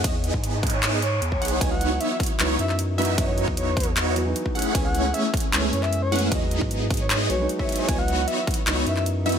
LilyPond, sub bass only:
\new Staff \with { instrumentName = "Sub bass" } { \clef bass \time 4/4 \key cis \minor \tempo 4 = 153 e,8. gis,2~ gis,16 e,8 b,,8 | cis,4 r4 cis,8 fis,4.~ | fis,8. e,2~ e,16 r4 | cis,4 r4 cis,8 fis,4. |
e,8. gis,4.~ gis,16 b,,8 r4 | cis,4 r4 cis,8 fis,4. | }